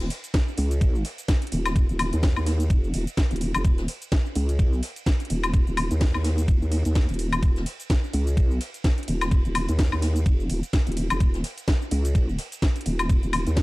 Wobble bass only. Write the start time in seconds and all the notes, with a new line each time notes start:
0.58 C#2
1.52 D#1
1.89 D#1
2.13 D#2
2.37 D#2
2.70 F1
2.94 D#1
3.31 D#1
3.55 F1
3.65 D#1
4.36 C#2
5.30 D#1
5.67 D#1
5.91 D#2
6.15 D#2
6.48 D#1
6.62 D#2
6.85 D#2
7.09 D#1
7.43 D#1
8.13 C#2
9.08 D#1
9.45 D#1
9.69 D#2
9.92 D#2
10.26 F1
10.50 D#1
10.87 D#1
11.10 F1
11.20 D#1
11.91 C#2
12.86 D#1
13.23 D#1
13.47 D#2